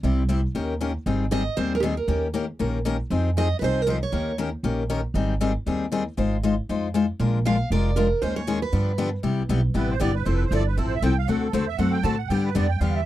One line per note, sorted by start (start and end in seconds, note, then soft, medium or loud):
0.03 0.44 C2 medium
0.03 0.22 C3 medium
0.03 0.22 G3 medium
0.03 0.22 C4 medium
0.03 0.22 E4 medium
0.03 0.23 G4 medium
0.29 0.39 C3 medium
0.29 0.39 G3 medium
0.29 0.40 C4 medium
0.29 0.40 E4 medium
0.29 0.40 G4 medium
0.55 0.96 D#2 medium
0.55 0.73 D#3 medium
0.55 0.73 A#3 medium
0.55 0.73 C#4 medium
0.55 0.73 G4 medium
0.55 0.74 A#4 medium
0.81 0.91 D#3 medium
0.81 0.91 A#3 medium
0.81 0.91 C#4 medium
0.81 0.91 G4 medium
0.81 0.91 A#4 medium
1.06 1.47 G#1 medium
1.06 1.24 D#3 medium
1.06 1.24 G3 medium
1.06 1.25 C4 medium
1.06 1.25 D#4 medium
1.06 1.25 G#4 medium
1.31 1.42 D#3 medium
1.31 1.42 G3 medium
1.31 1.42 C4 medium
1.31 1.42 D#4 medium
1.31 1.42 G#4 medium
1.31 1.58 D#5 loud
1.56 1.98 D#2 medium
1.56 1.75 D#3 medium
1.56 1.75 G3 medium
1.56 1.75 C4 medium
1.56 1.75 D#4 medium
1.56 1.76 G#4 medium
1.56 1.73 C5 loud
1.75 1.80 A#4 medium
1.80 1.93 D#3 medium
1.80 1.93 G3 medium
1.80 1.93 C4 medium
1.80 1.93 D#4 medium
1.80 1.83 G4 medium
1.80 1.96 G#4 medium
1.80 1.94 G#4 medium
1.97 2.21 A#4 medium
2.08 2.49 D#2 medium
2.08 2.26 D#3 medium
2.08 2.27 A#3 medium
2.08 2.27 C#4 medium
2.08 2.27 G4 medium
2.08 2.27 A#4 medium
2.34 2.44 D#3 medium
2.34 2.44 A#3 medium
2.34 2.44 C#4 medium
2.34 2.45 G4 medium
2.34 2.45 A#4 medium
2.59 3.01 A#1 medium
2.59 2.78 D#3 medium
2.59 2.78 A#3 medium
2.59 2.78 C#4 medium
2.59 2.78 G4 medium
2.59 2.78 A#4 medium
2.85 2.95 D#3 medium
2.85 2.96 A#3 medium
2.85 2.96 C#4 medium
2.85 2.96 G4 loud
2.85 2.96 A#4 medium
3.10 3.51 F2 medium
3.10 3.29 F3 medium
3.10 3.29 C4 medium
3.10 3.29 D#4 medium
3.10 3.29 G#4 medium
3.37 3.47 F3 medium
3.37 3.47 C4 medium
3.37 3.47 D#4 medium
3.37 3.47 G#4 medium
3.37 3.59 D#5 medium
3.59 4.03 C2 medium
3.59 3.80 F3 medium
3.59 3.80 C4 medium
3.59 3.80 D#4 medium
3.59 3.80 G#4 medium
3.59 3.62 B4 medium
3.64 3.82 C5 loud
3.82 3.89 A#4 medium
3.87 3.97 F3 medium
3.87 3.98 C4 medium
3.87 3.98 D#4 medium
3.87 3.98 G#4 medium
3.87 3.95 C5 medium
4.03 4.36 C#5 medium
4.12 4.54 D#2 medium
4.12 4.31 D#3 medium
4.12 4.31 A#3 medium
4.12 4.31 C#4 medium
4.12 4.31 G4 medium
4.12 4.31 A#4 medium
4.38 4.49 D#3 medium
4.38 4.49 A#3 medium
4.38 4.49 C#4 medium
4.38 4.49 G4 medium
4.38 4.49 A#4 loud
4.63 5.05 A#1 medium
4.63 4.82 D#3 medium
4.63 4.82 A#3 medium
4.63 4.82 C#4 medium
4.63 4.82 G4 medium
4.63 4.83 A#4 medium
4.90 5.00 D#3 medium
4.90 5.00 A#3 medium
4.90 5.00 C#4 medium
4.90 5.00 G4 medium
4.90 5.00 A#4 medium
5.14 5.55 G#1 medium
5.14 5.33 D#3 medium
5.14 5.33 G3 medium
5.14 5.33 C4 medium
5.14 5.34 D#4 medium
5.14 5.34 G#4 medium
5.41 5.51 D#3 medium
5.41 5.51 G3 medium
5.41 5.51 C4 loud
5.41 5.51 D#4 loud
5.41 5.52 G#4 loud
5.66 6.07 D#2 medium
5.66 5.85 D#3 medium
5.66 5.85 G3 medium
5.66 5.85 C4 medium
5.66 5.85 D#4 medium
5.66 5.85 G#4 medium
5.92 6.02 D#3 medium
5.92 6.02 G3 medium
5.92 6.02 C4 loud
5.92 6.02 D#4 medium
5.92 6.03 G#4 medium
6.17 6.58 G#1 medium
6.17 6.36 G#3 medium
6.17 6.36 D#4 medium
6.17 6.36 F4 medium
6.17 6.36 C5 medium
6.43 6.53 G#3 medium
6.43 6.54 D#4 medium
6.43 6.54 F4 medium
6.43 6.54 C5 loud
6.69 7.10 F2 medium
6.69 6.87 G#3 medium
6.69 6.87 D#4 medium
6.69 6.88 F4 medium
6.69 6.88 C5 medium
6.94 7.04 G#3 loud
6.94 7.05 D#4 medium
6.94 7.05 F4 loud
6.94 7.05 C5 loud
7.20 7.60 A#1 medium
7.20 7.38 F3 medium
7.20 7.38 G#3 medium
7.20 7.38 D4 medium
7.20 7.38 F4 medium
7.20 7.38 A#4 medium
7.45 7.56 F3 loud
7.45 7.56 G#3 medium
7.45 7.56 D4 medium
7.45 7.56 F4 loud
7.45 7.56 A#4 medium
7.45 7.71 F5 loud
7.70 8.11 F1 medium
7.70 7.89 F3 medium
7.70 7.90 G#3 medium
7.70 7.90 D4 medium
7.70 7.90 F4 medium
7.70 7.90 A#4 medium
7.70 7.98 D5 loud
7.96 8.07 F3 medium
7.96 8.07 G#3 loud
7.96 8.07 D4 loud
7.96 8.07 F4 medium
7.96 8.20 A#4 medium
7.96 8.07 A#4 medium
8.22 8.63 D#2 medium
8.22 8.40 D#3 medium
8.22 8.40 G#3 medium
8.22 8.40 C#4 medium
8.22 8.41 D#4 medium
8.22 8.41 G#4 medium
8.22 8.35 C5 medium
8.36 8.60 C#5 medium
8.47 8.57 D#3 medium
8.47 8.58 G#3 medium
8.47 8.58 C#4 loud
8.47 8.58 D#4 loud
8.47 8.58 G#4 loud
8.62 9.10 B4 medium
8.72 9.14 G2 medium
8.72 8.91 D3 medium
8.72 8.91 F3 medium
8.72 8.91 B3 medium
8.72 8.91 D4 medium
8.72 8.91 G4 medium
8.98 9.08 D3 medium
8.98 9.08 F3 medium
8.98 9.09 B3 medium
8.98 9.09 D4 medium
8.98 9.09 G4 loud
9.23 9.48 C2 medium
9.23 9.42 C3 medium
9.23 9.42 G3 medium
9.23 9.42 B3 medium
9.23 9.42 E4 medium
9.23 9.42 G4 medium
9.49 9.74 B1 medium
9.49 9.60 C3 medium
9.49 9.60 G3 loud
9.49 9.60 B3 medium
9.49 9.60 E4 medium
9.49 9.60 G4 medium
9.74 9.99 A1 medium
9.74 9.93 C3 medium
9.74 9.93 G3 medium
9.74 9.93 B3 medium
9.74 9.93 E4 medium
9.74 9.93 G4 medium
9.74 9.90 B4 medium
9.90 10.00 C5 medium
10.00 10.25 G1 medium
10.00 10.10 C3 medium
10.00 10.11 G3 medium
10.00 10.11 B3 medium
10.00 10.11 E4 loud
10.00 10.11 G4 loud
10.00 10.15 D5 medium
10.15 10.25 B4 medium
10.25 10.50 F1 medium
10.25 10.44 F3 medium
10.25 10.44 C4 medium
10.25 10.44 E4 medium
10.25 10.44 A4 medium
10.25 10.34 C5 medium
10.35 10.43 B4 medium
10.45 10.52 C5 medium
10.51 10.76 G1 medium
10.51 10.62 F3 medium
10.51 10.62 C4 medium
10.51 10.62 E4 medium
10.51 10.62 A4 loud
10.51 10.67 D5 medium
10.67 10.77 B4 medium
10.77 11.01 A1 medium
10.77 10.95 F3 medium
10.77 10.95 C4 medium
10.77 10.96 E4 medium
10.77 10.86 A4 medium
10.77 10.96 A4 medium
10.86 10.94 C5 medium
10.95 11.03 E5 medium
11.02 11.27 C2 medium
11.02 11.13 F3 medium
11.02 11.13 C4 medium
11.02 11.13 E4 medium
11.02 11.13 A4 medium
11.02 11.17 G5 loud
11.18 11.28 F5 medium
11.28 11.53 D2 medium
11.28 11.46 D3 medium
11.28 11.46 A3 medium
11.28 11.47 C4 medium
11.28 11.47 F#4 medium
11.28 11.47 A4 medium
11.28 11.42 F#5 medium
11.42 11.53 A4 medium
11.53 11.78 E2 medium
11.53 11.64 D3 medium
11.53 11.64 A3 medium
11.53 11.64 C4 medium
11.53 11.64 F#4 loud
11.53 11.64 A4 medium
11.53 11.68 C5 medium
11.68 11.79 E5 medium
11.78 12.03 F#2 medium
11.78 11.97 D3 medium
11.78 11.97 A3 medium
11.78 11.97 C4 medium
11.78 11.97 F#4 medium
11.78 11.97 A4 medium
11.78 11.93 F#5 medium
11.92 12.03 G5 medium
12.03 12.29 A2 medium
12.03 12.14 D3 medium
12.03 12.15 A3 medium
12.03 12.15 C4 medium
12.03 12.15 F#4 medium
12.03 12.15 A4 medium
12.03 12.18 A5 loud
12.18 12.29 F#5 medium
12.28 12.55 G2 medium
12.28 12.48 D3 medium
12.28 12.48 G3 medium
12.28 12.49 B3 medium
12.28 12.49 D4 medium
12.28 12.49 G4 medium
12.28 12.43 G5 medium
12.44 12.55 B4 medium
12.55 12.80 F2 medium
12.55 12.66 D3 medium
12.55 12.65 G3 medium
12.55 12.66 B3 loud
12.55 12.66 D4 medium
12.55 12.66 G4 loud
12.55 12.70 D5 medium
12.69 12.80 G5 medium
12.79 13.05 E2 medium
12.79 12.99 D3 medium
12.79 12.99 G3 medium
12.79 12.99 B3 medium
12.79 13.00 D4 medium
12.79 13.00 G4 medium
12.79 12.94 F5 medium
12.95 13.06 E5 medium